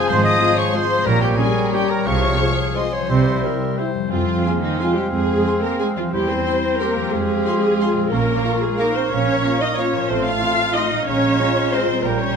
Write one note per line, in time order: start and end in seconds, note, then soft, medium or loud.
0.00 0.10 F2 loud
0.00 0.10 C3 medium
0.00 1.05 F3 medium
0.00 0.23 G#3 medium
0.00 0.31 C4 medium
0.00 0.39 F4 medium
0.00 0.48 G#4 medium
0.00 1.08 G#4 loud
0.00 0.56 C5 medium
0.00 1.02 C5 medium
0.00 0.64 F5 medium
0.08 0.35 G#1 loud
0.08 0.35 G#2 loud
0.08 1.07 G#2 medium
0.08 0.24 C5 loud
0.08 0.15 C5 loud
0.08 0.23 C6 loud
0.08 0.24 C6 loud
0.16 1.07 F3 medium
0.24 0.57 D#5 loud
0.24 0.59 D#5 loud
0.24 0.56 D#6 loud
0.24 0.57 D#6 loud
0.32 0.89 C4 medium
0.40 0.52 G#3 medium
0.40 0.49 G#3 medium
0.40 0.52 F4 medium
0.40 0.80 F4 medium
0.40 0.48 F4 medium
0.49 0.73 G#4 medium
0.57 1.07 C5 medium
0.57 0.74 C#5 loud
0.57 0.74 C#5 medium
0.57 0.76 C#6 medium
0.57 0.74 C#6 loud
0.66 1.07 F5 medium
0.73 0.82 G#3 medium
0.73 0.86 G#3 medium
0.73 0.82 F4 medium
0.73 0.85 F4 medium
0.73 1.07 G#4 medium
0.73 1.06 C5 loud
0.73 1.08 C5 loud
0.73 1.06 C6 loud
0.73 1.07 C6 loud
0.82 1.07 F4 medium
0.90 1.07 C4 medium
0.98 1.07 G#3 medium
1.05 1.33 A#1 loud
1.05 1.33 A#2 loud
1.05 2.08 A#2 medium
1.05 2.08 G3 medium
1.05 1.21 A#4 loud
1.05 1.90 A#4 medium
1.05 2.08 C#5 medium
1.05 1.23 A#5 loud
1.05 1.21 A#5 loud
1.13 2.08 A#3 medium
1.21 1.97 G3 medium
1.21 1.38 G4 medium
1.21 1.39 G4 loud
1.21 1.28 G5 loud
1.21 1.40 G5 loud
1.29 1.89 C#4 medium
1.38 1.47 G3 medium
1.38 1.51 G3 medium
1.38 1.46 C#4 medium
1.38 1.51 C#4 medium
1.38 1.75 G#4 loud
1.38 1.73 G#4 loud
1.38 1.80 A#4 medium
1.38 1.72 G#5 loud
1.47 1.72 G4 medium
1.56 2.08 C#5 medium
1.64 2.08 A#5 medium
1.73 1.85 G3 medium
1.73 1.81 G3 medium
1.73 1.85 C#4 medium
1.73 1.81 C#4 medium
1.73 2.08 G4 medium
1.73 1.92 G4 loud
1.73 1.90 G4 loud
1.73 1.89 G5 loud
1.73 1.90 G5 loud
1.81 2.08 A#4 medium
1.90 2.08 C#4 medium
1.90 2.07 A#4 loud
1.90 2.08 A#4 loud
1.90 2.06 A#5 loud
1.90 2.06 A#5 medium
1.99 2.08 G3 medium
2.05 2.35 C2 medium
2.05 2.35 C3 loud
2.05 3.09 C3 medium
2.05 2.82 F3 medium
2.05 2.37 G#4 medium
2.05 2.51 C#5 loud
2.05 2.75 C#5 loud
2.05 2.82 F5 medium
2.05 2.75 C#6 loud
2.05 2.50 C#6 loud
2.14 3.17 C4 medium
2.23 3.01 F3 medium
2.32 2.48 F4 medium
2.40 2.48 G#3 medium
2.40 2.53 G#3 medium
2.40 2.49 F4 medium
2.40 2.54 F4 medium
2.40 2.84 G#4 medium
2.40 2.78 G#4 medium
2.50 2.75 F4 medium
2.59 3.11 F5 medium
2.68 3.11 G#5 medium
2.75 2.83 G#3 medium
2.75 2.89 G#3 medium
2.75 2.83 F4 medium
2.75 2.93 F4 medium
2.75 2.89 F4 medium
2.75 3.78 C5 medium
2.75 3.74 C5 medium
2.75 2.95 D#5 loud
2.75 3.78 C6 loud
2.75 3.74 C6 medium
2.85 3.11 G#4 medium
2.93 3.11 F4 medium
2.93 3.12 C#5 medium
3.02 3.11 F3 medium
3.09 3.38 C2 loud
3.09 3.38 C3 medium
3.09 4.13 C3 medium
3.09 3.91 G3 medium
3.09 3.43 C5 loud
3.09 3.92 E5 medium
3.26 3.94 G3 medium
3.35 3.51 E4 medium
3.43 3.51 G3 medium
3.43 3.56 G3 medium
3.43 3.51 E4 medium
3.43 3.56 E4 medium
3.43 3.77 G4 medium
3.43 3.80 A#4 medium
3.53 3.86 E4 medium
3.61 4.13 E5 medium
3.70 4.13 G5 medium
3.78 3.90 G3 medium
3.78 3.86 G3 medium
3.78 3.90 E4 medium
3.78 3.86 E4 medium
3.78 4.13 G4 medium
3.78 4.11 C5 medium
3.87 4.13 E4 medium
3.94 6.05 F2 medium
3.94 4.13 G3 medium
3.98 6.08 F3 medium
4.03 6.03 C4 medium
4.07 4.59 F3 medium
4.07 6.09 C4 medium
4.07 6.12 G#4 medium
4.11 4.39 F2 medium
4.11 4.47 C4 medium
4.11 4.59 F4 loud
4.11 6.09 F5 medium
4.11 6.09 G#5 medium
4.45 4.80 A#3 medium
4.45 4.57 C4 medium
4.45 4.57 G#4 medium
4.45 4.53 G#5 medium
4.45 4.53 C6 medium
4.45 4.58 C6 medium
4.62 4.79 D#3 medium
4.62 4.79 D#4 medium
4.79 4.96 F3 medium
4.79 5.14 G#3 medium
4.79 4.92 C4 medium
4.79 4.96 F4 loud
4.79 4.91 G#4 medium
4.79 4.88 G#5 medium
4.79 4.91 C6 medium
4.79 4.88 C6 medium
4.96 5.12 G3 medium
4.96 5.12 G4 medium
5.12 5.40 F2 medium
5.12 5.62 G#3 medium
5.12 6.15 C4 medium
5.12 5.62 G#4 loud
5.45 5.58 C4 medium
5.45 5.58 G#4 medium
5.45 5.53 G#5 medium
5.45 5.54 C6 medium
5.45 5.58 C6 medium
5.63 5.80 A#3 medium
5.63 5.80 A#4 loud
5.80 5.97 G#3 medium
5.80 5.92 C4 medium
5.80 5.87 G#4 loud
5.80 5.92 G#4 medium
5.80 5.88 G#5 medium
5.80 5.92 C6 medium
5.80 5.90 C6 medium
5.95 7.05 E2 medium
5.95 6.13 F3 medium
5.95 6.03 F4 medium
6.00 7.07 G3 medium
6.04 8.09 C4 medium
6.09 7.07 C5 medium
6.13 6.40 E2 medium
6.13 6.29 G3 medium
6.13 8.08 C4 medium
6.13 6.46 E4 medium
6.13 6.29 G4 loud
6.13 7.11 G5 medium
6.13 8.08 C6 medium
6.29 6.80 C4 medium
6.29 6.80 C5 loud
6.46 6.59 C4 medium
6.46 6.82 E4 medium
6.46 6.59 G4 medium
6.46 6.54 G5 medium
6.46 6.54 C6 medium
6.46 6.55 C6 medium
6.46 6.59 C6 medium
6.80 7.13 A#3 medium
6.80 6.92 C4 medium
6.80 6.92 G4 medium
6.80 7.82 G4 medium
6.80 7.13 A#4 loud
6.80 6.89 G5 medium
6.80 6.89 C6 medium
6.80 6.93 C6 medium
6.95 8.04 F2 medium
7.00 7.97 F3 medium
7.04 8.02 F4 medium
7.09 8.11 C5 medium
7.13 7.40 F2 medium
7.13 8.12 G#3 medium
7.13 8.12 G#4 loud
7.13 8.10 F5 medium
7.46 7.58 C4 medium
7.46 7.58 F4 medium
7.46 7.54 F5 medium
7.46 7.54 C6 medium
7.46 7.59 C6 medium
7.80 7.91 C4 medium
7.80 7.91 F4 medium
7.80 8.11 F4 medium
7.80 7.88 F5 medium
7.80 7.88 C6 medium
7.80 7.92 C6 medium
7.94 10.02 A#2 medium
7.98 9.95 F3 medium
8.03 10.00 F4 medium
8.08 10.09 C#5 medium
8.12 8.39 A#1 medium
8.12 10.06 A#3 medium
8.12 8.62 A#3 medium
8.12 8.47 C#4 medium
8.12 8.61 A#4 loud
8.12 10.06 F5 medium
8.12 10.06 C#6 medium
8.45 8.58 A#3 medium
8.45 8.79 F4 medium
8.45 8.58 F4 medium
8.45 8.58 C#5 medium
8.45 8.53 F5 medium
8.45 8.53 A#5 medium
8.45 8.53 C#6 medium
8.63 8.80 G#3 medium
8.63 8.79 G#4 loud
8.78 8.96 A#3 medium
8.78 8.92 A#3 medium
8.78 9.11 D#4 medium
8.78 8.91 F4 medium
8.78 8.96 A#4 loud
8.78 8.91 C#5 medium
8.78 8.86 F5 medium
8.78 8.86 A#5 medium
8.78 8.87 C#6 medium
8.96 9.02 C4 medium
8.96 9.12 C5 loud
9.12 9.38 A#1 medium
9.12 9.60 C#4 medium
9.12 9.61 C#4 medium
9.12 9.61 C#5 loud
9.44 9.56 A#3 medium
9.44 9.57 F4 medium
9.44 9.57 C#5 medium
9.44 9.52 F5 medium
9.44 9.52 A#5 medium
9.44 9.52 C#6 medium
9.61 9.68 D#4 medium
9.61 9.78 D#5 loud
9.77 9.89 A#3 medium
9.77 10.09 C#4 medium
9.77 9.89 F4 medium
9.77 10.43 F4 medium
9.77 10.10 C#5 loud
9.77 9.90 C#5 medium
9.77 9.86 F5 medium
9.77 9.86 A#5 medium
9.77 9.86 C#6 medium
9.92 11.00 A2 medium
9.96 11.99 F3 medium
10.06 11.07 C5 medium
10.10 10.37 A1 medium
10.10 10.80 A3 medium
10.10 10.26 C4 medium
10.10 10.26 C5 loud
10.10 11.88 F5 medium
10.10 10.80 C6 medium
10.25 10.76 F4 medium
10.25 10.76 F5 loud
10.42 10.54 A3 medium
10.42 10.86 C4 medium
10.42 10.54 F4 medium
10.42 10.51 F5 medium
10.42 10.50 C6 medium
10.42 10.55 C6 medium
10.42 10.51 C6 medium
10.76 10.88 A3 medium
10.76 11.08 D#4 medium
10.76 10.88 F4 medium
10.76 11.08 D#5 loud
10.76 10.85 F5 medium
10.76 10.88 C6 medium
10.76 10.85 C6 medium
10.90 11.86 A#2 medium
10.94 11.99 G#3 medium
10.99 12.01 F4 medium
11.04 11.99 A#4 medium
11.08 11.34 A#1 medium
11.08 12.01 G#3 medium
11.08 11.41 C#4 medium
11.08 11.72 C#4 medium
11.08 11.72 C#5 loud
11.08 12.01 A#5 medium
11.39 11.52 G#3 medium
11.39 11.52 F4 medium
11.39 12.36 F4 medium
11.39 11.47 F5 medium
11.39 11.48 G#5 medium
11.39 11.48 A#5 medium
11.39 11.52 A#5 medium
11.73 11.84 G#3 medium
11.73 12.04 C4 medium
11.73 11.84 F4 medium
11.73 12.04 C5 loud
11.73 11.81 F5 medium
11.73 11.81 G#5 medium
11.73 11.81 A#5 medium
11.73 11.85 A#5 medium
11.87 12.36 A#2 medium
11.91 12.36 G3 medium
11.96 12.36 G4 medium
12.00 12.36 A#4 medium
12.04 12.31 A#1 medium
12.04 12.36 G3 medium
12.04 12.20 A#3 medium
12.04 12.20 A#4 medium
12.04 12.36 G5 medium
12.04 12.36 A#5 medium
12.19 12.36 C#4 medium
12.19 12.36 C#5 loud